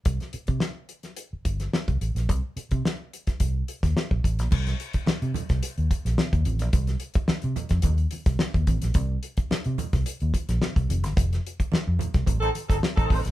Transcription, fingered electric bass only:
X:1
M:4/4
L:1/16
Q:1/4=108
K:Fmix
V:1 name="Fingered electric bass" clef=bass
C,, z2 C, z6 G,,,2 z C,, A,,, B,,, | C,, z2 C, z4 C,,2 z E,, z B,,, A,,, B,,, | C,,2 z3 C, z C,, z E,, z B,,, z E,, A,,, B,,, | C,,2 z3 C, z F,, E,,2 z C,, z E,, A,,, B,,, |
C,,2 z3 C, z C,, z E,, z B,,, z C,, F,,, G,,, | F,,,2 z3 F,, z C,, A,,,2 z G,,, z A,,, A,,, B,,, |]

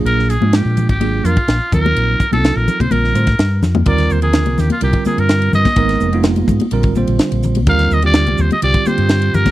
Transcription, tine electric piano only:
X:1
M:4/4
L:1/16
Q:1/4=126
K:Bb
V:1 name="Tine electric piano"
[_G,B,DF_A]2 z [F,_A,B,DF]4 z [G,B,DFA]2 [G,B,DFB] [FA] z2 [G,CEFB]2- | [_G,CEFB]2 z [G,CEFA]4 z [D,=G,CFB]2 [D,G,CFc] F z4 | [K:Eb] [D,G,CFB]3 [D,F,CFB]4 z [D,G,CFB]2 [D,G,CFB]4- [D,G,CFB] z | [A,B,_CEB]3 [A,B,CEF]4 z [D,G,=CFB]2 [D,G,CFc]4- [D,G,CFc] z |
[D,G,CFB]3 [D,G,CFG]4 z [D,G,CFG]2 [D,G,CFG]4- [D,G,CFG] z |]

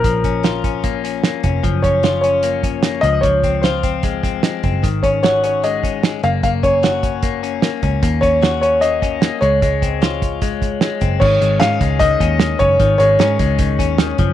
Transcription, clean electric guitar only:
X:1
M:4/4
L:1/8
Q:1/4=150
K:Abmix
V:1 name="Clean electric guitar"
F, D F D B, D B, D | F, D F D B, D B, F, | F, C F C A, C A, C | E, D G D A, D A, B, |
B, D G D B, D B, D | B, D G D B, D B, A, | A, C F2 A,2 A, C | E, A, D A, E, D E, D |
E, A, D A, E, D E, F, |]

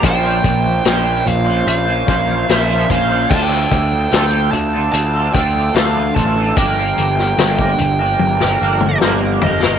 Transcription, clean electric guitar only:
X:1
M:4/4
L:1/16
Q:1/4=74
K:Gm
V:1 name="Clean electric guitar"
[B,,F,B,_DFc] [B,DFc]3 [B,,F,B,DFc] [B,DFc]2 [B,DFc]2 [B,DFc] [B,DFc]2 [B,,F,B,DFc] [B,DFc] [B,DFc] [B,DFc] | [D,A,DFA] [DFA]3 [D,A,DFA] [DFA]2 [DFA]2 [DFA] [A,DFA]2 [D,A,DFA] [DFA] [A,DFA] [DFA] | [G,,D,F,B,DB] [F,B,DB]3 [G,,D,F,B,DB] [F,B,DB]2 [F,B,DB]2 [F,B,DB] [F,B,DB]2 [G,,D,F,B,DB] [F,B,DB] [F,B,DB] [F,B,DB] |]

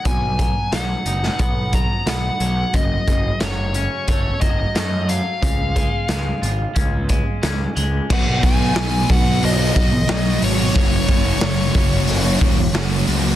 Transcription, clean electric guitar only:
X:1
M:4/4
L:1/8
Q:1/4=90
K:Cblyd
V:1 name="Clean electric guitar" clef=bass
=B,, ^F, F, ^D =B, F, B, F, | G,, D, G, D =A, G, A, G, | D, A, A, F D A, D A, | z8 |
z8 |]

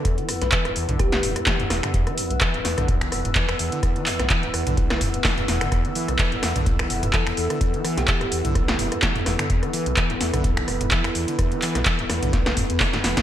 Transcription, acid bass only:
X:1
M:4/4
L:1/16
Q:"Swing 16ths" 1/4=127
K:Clyd
V:1 name="Acid bass" clef=bass
E,, E, E,, A,, E, E,, E,, D, E,, E, E,, A,, E, E,, E,, D, | E,, E, E,, A,, E, E,, E,, D, E,, E, E,, A,, E, E,, E,, D, | E,, E, E,, A,, E, E,, E,, D, E,, E, E,, A,, E, E,, E,, D, | E,, E, E, A,, E, E,, E,, D, E,, E, E,, A,, E, E,, E,, D, |
E,, E, E, A,, E, E,, E,, D, E,, E, E,, A,, E, E,, E,, D, | E,, E, E, A,, E, E,, E,, D, E,, E, E,, A,, E, E,, E,, D, | E,, E, E, A,, E, E,, E,, D, E,, E, E,, E,, E, D, E, A,, |]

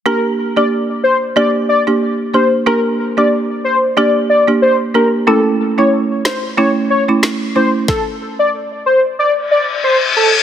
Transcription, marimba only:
X:1
M:4/4
L:1/16
Q:"Swing 16ths" 1/4=92
K:Gm
V:1 name="Marimba"
[B,DG]3 [B,DG] z4 [B,DG]3 [B,DG] z2 [B,DG] z | [B,DG]3 [B,DG] z4 [B,DG]3 [B,DG] z2 [B,DG] z | [A,^C=E]3 [A,CE] z4 [A,CE]3 [A,CE] z2 [A,CE] z | z16 |]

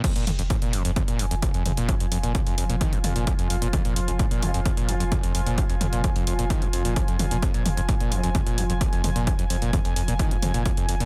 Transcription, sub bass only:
X:1
M:4/4
L:1/16
Q:1/4=130
K:Fm
V:1 name="Sub bass" clef=bass
z F,,, F,,, F,,, z F,,, F,,, F,,, z F,,, F,,, F,,, z F,,, F,,, F,,, | z F,,, F,,, F,,, z F,,, F,,, F,,, z F,,, F,,, F,,, z F,,, F,,, F,,, | z F,,, F,,, F,,, z F,,, F,,, F,,, z F,,, F,,, F,,, z F,,, F,,, F,,, | z F,,, F,,, F,,, z F,,, F,,, F,,, z F,,, F,,, F,,, z F,,, F,,, F,,, |
z F,,, F,,, F,,, z F,,, F,,, F,,, z F,,, F,,, F,,, z F,,, F,,, F,,, | z F,,, F,,, F,,, z F,,, F,,, F,,, z F,,, F,,, F,,, z F,,, F,,, F,,, |]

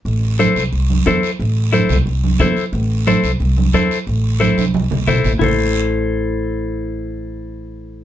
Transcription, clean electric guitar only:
X:1
M:4/4
L:1/8
Q:1/4=179
K:Am
V:1 name="Clean electric guitar"
z2 [EAc] z3 [EAc] z | z2 [EAc] z3 [EAc] z | z2 [EAc] z3 [EAc] z | z2 [EAc] z3 [EAc] z |
[EAc]8- | [EAc]8 |]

